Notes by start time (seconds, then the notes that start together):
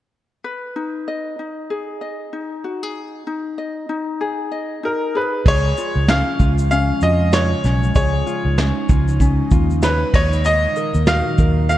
0.44 B4
0.76 D#4
1.08 D#5
1.39 D#4
1.70 G#4
2.01 D#5
2.33 D#4
2.64 F#4
2.83 G#4
3.27 D#4
3.58 D#5
3.89 D#4
4.21 G#4
4.52 D#5
4.83 D#4 A#4
5.15 G#4 B4
5.45 C#2 C#3 F3 G#3 F4 G#4 C#5, kick, crash
5.77 F4, shaker
5.96 C#2
6.08 C#4 F5, snare, shaker
6.39 C#2 F4, kick, shaker
6.58 shaker
6.71 C#4 F5, shaker
7.01 F2 F4 D#5, shaker
7.33 C#5, snare, shaker
7.64 B1 C#4, snare, shaker
7.83 shaker
7.95 C#2 D#4 G#4 C#5, kick, shaker
8.27 F4, shaker
8.45 C#2
8.58 C#4, snare, shaker
8.89 C#2 F4, kick, shaker
9.08 shaker
9.20 C#4, kick, shaker
9.51 D#2 F4, kick, shaker
9.70 shaker
9.82 B4 C#5, snare, shaker
10.13 D#2 A#2 D#3 F#3 D#4 C#5 D#5, kick, crash
10.33 shaker
10.45 D#5 F5, shaker
10.76 A#4, shaker
10.94 D#2, shaker
11.07 F#4 F5, snare, shaker
11.38 D#2 A#4, kick, shaker
11.69 F#4 F5, shaker